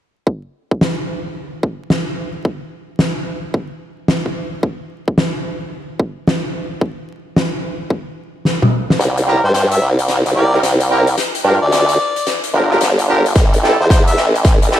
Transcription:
0.27 kick loud
0.71 kick medium
0.81 snare loud
1.63 kick loud
1.90 snare loud
2.45 kick loud
2.99 snare loud
3.54 kick medium
4.08 snare loud
4.26 kick medium
4.63 kick loud
5.08 kick loud
5.18 snare loud
6.00 kick loud
6.28 snare loud
6.81 kick loud
7.37 snare loud
7.90 kick loud
8.45 snare medium
8.62 kick medium
8.62 high tom medium
8.90 snare medium
8.99 9.41 C2 medium
8.99 snare soft
8.99 closed hi-hat medium
9.17 closed hi-hat medium
9.27 9.40 C4 medium
9.27 9.40 E4 medium
9.27 9.40 G4 medium
9.27 9.40 A#4 loud
9.44 9.80 G2 medium
9.44 9.51 C5 medium
9.53 9.65 C5 medium
9.53 snare soft
9.53 closed hi-hat medium
9.71 9.86 E5 medium
9.71 closed hi-hat medium
9.81 10.23 C2 loud
9.81 cross-stick soft
9.99 closed hi-hat medium
10.08 snare soft
10.08 closed hi-hat medium
10.26 10.34 C2 medium
10.26 cross-stick medium
10.26 closed hi-hat medium
10.36 10.61 C2 medium
10.36 10.49 C4 medium
10.36 10.49 E4 medium
10.36 10.49 G4 medium
10.36 10.49 A#4 medium
10.36 10.56 D5 medium
10.53 10.61 C4 medium
10.53 10.61 E4 medium
10.53 10.61 G4 medium
10.53 10.61 A#4 medium
10.53 cross-stick medium
10.63 11.16 C2 loud
10.63 snare medium
10.63 closed hi-hat medium
10.80 closed hi-hat medium
10.90 11.04 C4 medium
10.90 11.04 E4 medium
10.90 11.04 G4 medium
10.90 11.04 A#4 loud
11.07 closed hi-hat soft
11.18 snare medium
11.18 closed hi-hat loud
11.35 closed hi-hat medium
11.44 11.59 G2 loud
11.44 11.58 D4 medium
11.44 11.58 F4 medium
11.44 11.58 G4 medium
11.44 11.58 A#4 medium
11.62 11.98 D2 medium
11.62 12.37 D5 medium
11.72 snare medium
11.72 closed hi-hat medium
11.89 closed hi-hat medium
11.99 cross-stick soft
12.16 closed hi-hat soft
12.27 snare medium
12.27 closed hi-hat medium
12.44 closed hi-hat medium
12.54 12.79 G1 medium
12.54 12.67 D4 medium
12.54 12.67 F4 medium
12.54 12.67 G4 medium
12.54 12.67 A#4 medium
12.71 12.79 D4 medium
12.71 12.79 F4 medium
12.71 12.79 G4 medium
12.71 12.79 A#4 medium
12.71 cross-stick medium
12.81 13.34 G1 loud
12.81 snare medium
12.81 closed hi-hat medium
12.98 cross-stick soft
12.98 closed hi-hat medium
13.08 13.22 D4 medium
13.08 13.22 F4 medium
13.08 13.22 G4 medium
13.08 13.22 A#4 loud
13.26 closed hi-hat medium
13.35 13.78 A1 medium
13.35 kick loud
13.35 snare medium
13.35 closed hi-hat medium
13.53 closed hi-hat medium
13.63 13.76 C4 medium
13.63 13.76 E4 medium
13.63 13.76 G4 medium
13.63 13.76 A4 medium
13.63 snare medium
13.80 14.16 E2 loud
13.80 13.87 C5 medium
13.90 14.01 C5 medium
13.90 kick medium
13.90 snare medium
13.90 closed hi-hat medium
14.06 14.21 E5 medium
14.06 closed hi-hat medium
14.17 14.59 A1 medium
14.17 snare medium
14.35 closed hi-hat medium
14.44 kick loud
14.44 snare medium
14.44 closed hi-hat medium
14.62 14.70 A1 medium
14.62 closed hi-hat medium
14.71 14.80 A1 medium
14.71 14.80 C4 medium
14.71 14.80 E4 medium
14.71 14.80 G4 medium
14.71 14.80 A4 medium
14.71 snare medium

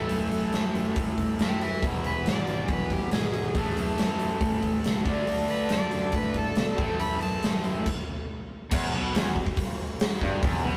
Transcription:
0.00 1.59 A2 medium
0.00 1.85 E3 medium
0.00 1.62 A3 medium
0.00 0.51 A4 loud
0.09 0.28 F#2 medium
0.09 open hi-hat medium
0.31 0.49 F#2 medium
0.31 open hi-hat soft
0.53 0.71 F#2 medium
0.53 snare loud
0.53 open hi-hat medium
0.74 0.92 F#2 medium
0.74 open hi-hat medium
0.96 1.32 A2 medium
0.96 kick loud
0.96 open hi-hat medium
1.18 kick medium
1.18 open hi-hat soft
1.38 1.75 F#2 medium
1.38 1.61 E5 medium
1.38 snare loud
1.38 open hi-hat medium
1.43 1.62 G5 loud
1.61 1.82 B4 medium
1.61 1.83 E5 medium
1.61 open hi-hat soft
1.82 2.00 E1 medium
1.82 3.54 E2 medium
1.82 3.54 B2 medium
1.82 3.55 E3 loud
1.82 kick loud
1.82 open hi-hat medium
2.04 2.22 E1 medium
2.04 2.26 B4 medium
2.04 open hi-hat soft
2.25 2.43 G#1 medium
2.25 2.69 D5 loud
2.25 snare loud
2.25 open hi-hat medium
2.47 2.65 G#1 medium
2.47 open hi-hat soft
2.68 2.87 B1 medium
2.68 kick loud
2.68 open hi-hat medium
2.73 2.92 B4 medium
2.90 3.08 B1 medium
2.90 3.12 G4 medium
2.90 kick medium
2.90 open hi-hat soft
3.11 3.48 G#1 medium
3.11 3.96 G#4 medium
3.11 snare medium
3.11 open hi-hat medium
3.33 open hi-hat soft
3.55 3.73 A1 medium
3.55 5.04 A2 medium
3.55 5.05 E3 medium
3.55 5.06 A3 medium
3.55 kick loud
3.55 open hi-hat medium
3.77 3.95 F#2 medium
3.77 open hi-hat soft
3.98 4.17 F#2 medium
3.98 snare loud
3.98 open hi-hat medium
4.19 4.38 F#2 medium
4.19 open hi-hat soft
4.41 4.77 A2 medium
4.41 kick loud
4.41 open hi-hat medium
4.63 kick medium
4.63 open hi-hat soft
4.84 5.02 C#2 medium
4.84 snare loud
4.84 open hi-hat medium
5.04 5.23 D2 medium
5.04 6.76 D3 medium
5.04 6.77 A3 medium
5.04 kick loud
5.04 open hi-hat soft
5.09 6.78 D4 medium
5.26 5.44 D2 medium
5.26 open hi-hat medium
5.47 5.66 D2 medium
5.47 5.70 B4 medium
5.47 open hi-hat soft
5.69 5.88 F#2 medium
5.69 6.13 D5 loud
5.69 snare loud
5.69 open hi-hat medium
5.91 6.10 F#2 medium
5.91 open hi-hat medium
6.12 6.31 A2 medium
6.12 6.35 B4 medium
6.12 kick loud
6.12 open hi-hat medium
6.34 6.52 A2 medium
6.34 6.57 A4 medium
6.34 kick medium
6.34 open hi-hat soft
6.55 6.75 B2 medium
6.55 6.99 A4 loud
6.55 snare loud
6.55 open hi-hat medium
6.77 6.96 A1 medium
6.77 7.84 A2 medium
6.77 7.85 E3 medium
6.77 7.86 A3 medium
6.77 kick loud
6.77 open hi-hat soft
6.99 7.18 F#2 medium
6.99 7.20 B5 medium
6.99 open hi-hat medium
7.21 7.40 F#2 medium
7.21 7.43 A5 medium
7.21 open hi-hat soft
7.43 7.61 F#2 medium
7.43 snare loud
7.43 open hi-hat medium
7.64 7.82 F#2 medium
7.64 open hi-hat soft
7.86 kick medium
7.86 crash medium
8.71 8.92 E1 medium
8.71 8.93 E2 loud
8.71 kick loud
8.71 crash loud
8.93 9.13 B1 medium
8.93 9.14 B2 loud
9.14 9.34 E1 medium
9.14 9.35 E2 loud
9.14 snare loud
9.14 open hi-hat medium
9.36 kick medium
9.46 kick medium
9.57 kick loud
9.57 open hi-hat medium
10.00 snare loud
10.00 open hi-hat medium
10.21 10.41 G1 loud
10.21 10.43 G2 loud
10.21 kick medium
10.21 snare soft
10.43 10.63 E1 loud
10.43 10.64 E2 loud
10.43 kick loud
10.43 open hi-hat medium
10.64 10.77 B1 loud
10.64 10.77 B2 loud

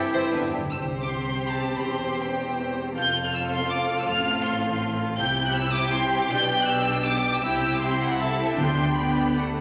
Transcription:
0.00 0.33 E3 soft
0.00 0.32 C4 soft
0.00 0.51 E4 soft
0.00 0.52 G4 medium
0.00 0.52 G5 soft
0.13 0.21 G1 medium
0.13 0.21 G2 medium
0.13 0.31 E4 soft
0.13 0.31 C5 medium
0.32 0.41 G1 soft
0.32 0.40 G2 soft
0.32 0.41 G2 soft
0.32 0.52 D3 soft
0.32 0.52 B3 soft
0.32 0.41 D4 soft
0.32 0.40 B4 soft
0.42 0.48 G2 soft
0.49 0.60 G1 soft
0.49 0.56 G2 soft
0.49 0.60 G2 soft
0.49 0.61 D4 soft
0.49 0.60 G4 soft
0.58 0.64 G2 soft
0.65 0.72 G2 medium
0.70 1.81 C2 soft
0.70 1.80 C3 soft
0.70 2.92 C4 soft
0.70 2.92 G4 soft
0.70 2.92 G4 medium
0.70 2.92 C5 soft
0.70 0.78 E6 medium
1.01 1.10 D6 medium
1.08 1.46 C6 medium
1.48 1.75 A5 medium
1.76 1.85 B5 medium
1.84 2.94 E1 soft
1.84 2.94 E2 medium
1.84 2.22 C6 medium
2.23 2.78 G5 medium
2.96 4.07 F1 medium
2.96 4.07 F2 medium
2.96 5.14 C4 soft
2.96 5.14 F4 soft
2.96 5.14 A4 medium
2.96 5.15 F5 medium
2.96 3.22 G6 medium
3.25 3.33 F6 medium
3.35 3.42 E6 medium
3.53 3.70 C6 medium
3.69 3.97 D6 medium
3.98 4.02 E6 medium
4.06 5.19 A1 medium
4.06 5.18 A2 medium
4.06 4.43 F6 medium
4.44 5.00 C6 medium
5.17 6.28 C2 medium
5.17 6.28 C3 medium
5.17 6.27 C4 medium
5.17 6.27 E4 medium
5.17 7.41 G4 medium
5.17 7.41 G5 medium
5.17 5.44 G6 medium
5.46 5.55 F#6 medium
5.55 5.74 E6 medium
5.74 5.93 D6 medium
5.92 6.20 C6 medium
6.22 6.31 D6 medium
6.29 7.42 B1 medium
6.29 7.41 B2 medium
6.29 7.40 D4 medium
6.29 6.58 G6 loud
6.60 6.69 F#6 medium
6.67 7.05 E6 medium
7.05 7.34 D6 medium
7.35 7.42 E6 medium
7.43 8.54 C2 medium
7.43 8.54 C3 medium
7.43 7.78 C4 medium
7.43 7.78 E4 medium
7.43 7.79 G4 medium
7.43 7.79 G5 medium
7.43 7.71 E6 medium
7.74 7.82 D6 medium
7.80 8.18 C4 soft
7.80 8.18 E4 medium
7.80 8.19 G4 medium
7.80 7.90 G5 medium
7.80 8.09 C6 medium
8.01 8.19 F#5 medium
8.11 8.20 B5 medium
8.19 8.57 C4 medium
8.19 8.57 E4 medium
8.19 8.57 A4 medium
8.19 8.58 E5 medium
8.19 8.48 A5 medium
8.48 8.58 G5 medium
8.57 9.54 D2 medium
8.57 9.53 D3 soft
8.57 9.13 D3 medium
8.57 8.96 B3 soft
8.57 8.96 D4 soft
8.57 8.98 G4 soft
8.57 8.98 G5 medium
8.57 8.96 C6 medium
8.96 9.36 B3 soft
8.96 9.34 D4 soft
8.96 9.36 G4 soft
8.96 9.36 G5 soft
8.96 9.36 B5 medium
9.35 9.55 A3 soft
9.35 9.43 D4 soft
9.35 9.56 A4 soft
9.35 9.45 F#5 soft

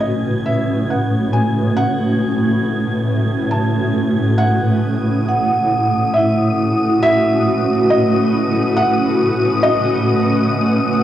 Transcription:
0.00 9.59 A2 medium
0.00 11.03 A3 medium
0.00 4.43 C#4 medium
0.00 4.42 F#4 medium
0.00 4.42 B4 medium
0.00 0.49 D#5 medium
0.00 4.42 D#6 medium
0.00 4.43 G#6 medium
0.46 0.88 E5 medium
0.90 1.37 F#5 medium
1.33 1.80 G#5 medium
1.77 3.58 F#5 loud
3.51 4.42 A5 medium
4.38 5.66 F#5 medium
4.38 11.03 D#6 medium
5.06 11.03 C#4 medium
5.27 11.03 F#4 medium
5.27 6.33 F#5 medium
5.60 11.03 F#5 medium
6.01 11.03 B4 medium
6.14 9.20 E4 medium
6.14 7.01 E5 medium
7.03 7.92 E5 loud
7.46 10.50 F#4 medium
7.90 8.79 D#5 medium
8.77 9.66 F#5 loud
9.60 11.03 A2 medium
9.60 10.90 D#5 medium

